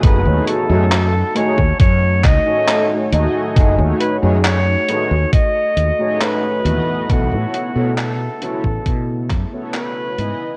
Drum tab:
HH |x-x-x-x-x-x-x-x-|x-x-x-x-x-x-x-x-|x-x-x-x-x-x-x-x-|
CP |----x-----x-x---|----x-------x---|----x-----x-x---|
BD |o------oo-o-----|o-------o-------|o------oo-o-----|